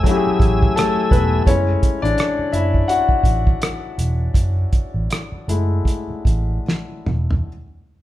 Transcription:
Already playing: A3 G#5 E6
0.03 F#3 A3 C#4, kick, closed hi-hat
0.09 E4 G4
0.17 G#4
0.27 muted fingered electric bass stroke
0.40 A1, kick, closed hi-hat
0.63 kick
0.76 A3 A4, cross-stick, closed hi-hat
1.11 E1 B3 B4, kick, closed hi-hat
1.47 F#1 G#3 A3 C#4 E4 C#5, kick, closed hi-hat
1.83 kick, closed hi-hat
2.02 A1 D4 D5, closed hi-hat
2.18 cross-stick, closed hi-hat
2.39 muted fingered electric bass stroke
2.52 F#1 E4 E5, closed hi-hat
2.74 kick
2.88 F#4 F#5, closed hi-hat
3.09 muted fingered electric bass stroke, kick
3.24 A1, kick, closed hi-hat
3.47 kick
3.62 cross-stick, closed hi-hat
3.98 E1, closed hi-hat
4.34 F#1, kick, closed hi-hat
4.73 kick, closed hi-hat
4.94 A1
5.10 cross-stick, closed hi-hat
5.32 muted fingered electric bass stroke
5.48 F#1 G#3 A3 E4, closed hi-hat
5.85 kick, closed hi-hat
6.10 muted fingered electric bass stroke
6.25 A1, kick, closed hi-hat
6.68 snare
7.06 E1, mid tom
7.31 floor tom

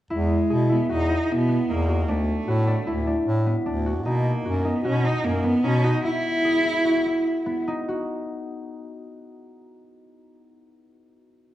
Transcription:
0.10 E2 G#3 E4
0.50 B2 G#4
0.69 B3 E4
0.89 E2 D#4 F#4
1.09 E4
1.28 B2 B3
1.49 B3
1.68 E2 A#3 D#4
1.88 F#4
2.07 D2 A3 D4
2.47 A2 F#4
2.67 D4
2.87 D2 E4
3.07 D4
3.26 A2
3.46 B3
3.65 D2 D4
3.86 F#4
4.04 B2 A#3 D#4
4.44 F#2 F#4
4.65 B3 D#4
4.84 B2 C#4 F#4
5.04 D#4
5.24 F#2 A#3
5.44 B3
5.64 B2 C#4 D#4
5.83 D#4 F#4
6.04 E4
6.45 G#4
6.65 E4
6.85 F#4
7.06 E4
7.46 B3
7.68 D#4
7.88 F#4

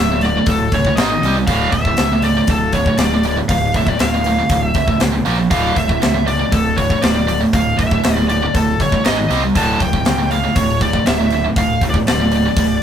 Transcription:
Already playing: D1 E5
0.00 D2 A2
0.09 D2 A2
0.21 D2 A2 D5, open hi-hat
0.34 D2 A2
0.46 D1 D2 A2 A4, kick, open hi-hat
0.72 C#2 D2 A2 C#5, kick, open hi-hat
0.85 D2 A2, kick
0.96 G#1 G#2 D#3 G#3 D#5, snare, open hi-hat
1.09 G#2 D#3
1.21 C2 C3 G3 C4, open hi-hat
1.37 C3 G3
1.47 D1 D2 A2 D3 F5, kick, open hi-hat
1.72 D1 D2 A2 E5, kick, open hi-hat
1.85 D2 A2, kick
1.97 C#2 D2 A2, snare, open hi-hat
2.09 D2 A2
2.21 D2 A2 D5, open hi-hat
2.33 D2 A2
2.47 D1 D2 A2 A4, kick, open hi-hat
2.72 D2 A2 C#5, kick, open hi-hat
2.86 D2 A2, kick
2.98 D1 D2 A2 D5, snare, open hi-hat
3.11 D2 A2
3.23 D2 A2, open hi-hat
3.36 D2 A2
3.49 D1 D2 A2 F5, kick, open hi-hat
3.74 D1 D2 A2 E5, kick, open hi-hat
3.87 D2 A2 D5, kick
3.99 D1 D2 A2 F5, snare, open hi-hat
4.13 D2 A2
4.24 D2 A2, open hi-hat
4.39 D2 A2
4.49 D1 D2 A2, kick, open hi-hat
4.65 E5
4.74 C#2 D2 A2, kick, open hi-hat
4.88 D2 A2, kick
5.00 C#2 D2 A2, snare, open hi-hat
5.14 D2 A2
5.26 A#1 A#2 F3 A#3, open hi-hat
5.39 A#2 F3
5.51 D1 D2 A2 D3 F5, kick, open hi-hat
5.76 D1 D2 A2 E5, kick, open hi-hat
5.87 D2 A2, kick
6.00 C#2 D2 A2, snare, open hi-hat
6.13 D2 A2
6.25 D2 A2 D5, open hi-hat
6.38 D2 A2
6.50 D1 D2 A2 A4, kick, open hi-hat
6.76 D2 A2 C#5, kick, open hi-hat
6.89 D2 A2, kick
7.01 D1 D2 A2 D5, snare, open hi-hat
7.14 D2 A2
7.27 D2 A2, open hi-hat
7.40 D2 A2
7.53 D1 D2 A2 F5, kick, open hi-hat
7.77 D1 D2 A2 E5, kick, open hi-hat
7.90 D2 A2, kick
8.03 D1 D2 A2, snare, open hi-hat
8.16 D2 A2
8.28 D2 A2 D5, open hi-hat
8.42 D2 A2
8.55 D1 D2 A2 A4, kick, open hi-hat
8.79 G1 D2 A2 C#5, kick, open hi-hat
8.92 D2 A2, kick
9.05 G#1 G#2 D#3 G#3 D#5, snare, open hi-hat
9.18 G#2 D#3
9.30 C2 C3 G3 C4, open hi-hat
9.42 C3 G3
9.55 D1 D2 A2 D3 A5, kick, open hi-hat
9.80 D1 D2 A2 G5, kick, open hi-hat
9.93 D2 A2, kick
10.05 C#2 D2 A2, snare, open hi-hat
10.20 D2 A2
10.31 D2 A2 F5, open hi-hat
10.46 D2 A2
10.56 D1 D2 A2 C#5, kick, open hi-hat
10.81 D2 A2 D5, kick, open hi-hat
10.93 D2 A2, kick
11.06 D1 D2 A2 E5, snare, open hi-hat
11.21 D2 A2
11.31 D2 A2, open hi-hat
11.47 D2 A2
11.56 D1 D2 A2 F5, kick, open hi-hat
11.81 D1, kick, open hi-hat
11.85 D2 A2
11.90 D5
11.94 D2 A2, kick
12.07 D1 D2 A2 D5, snare, open hi-hat
12.22 D2 A2
12.31 D2, open hi-hat
12.36 A2
12.48 D2 A2
12.56 D1, kick, open hi-hat
12.61 D2 A2

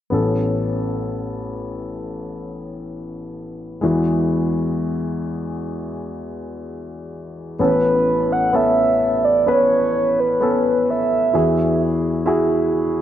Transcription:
0.10 A1 A2 B3 C#4 A4
3.81 E2 E3 G#3 E4 F#4
7.59 A1 A2 B3 C#4 A4 B4
8.32 F#5
8.53 B3 C#4 A4 E5
9.24 D5
9.46 B3 C#4 B4 C#5
10.20 B4
10.41 B3 C#4 A4
10.90 E5
11.33 E2 E3 E4 F#4 G#4
12.26 E4 F#4 G#4

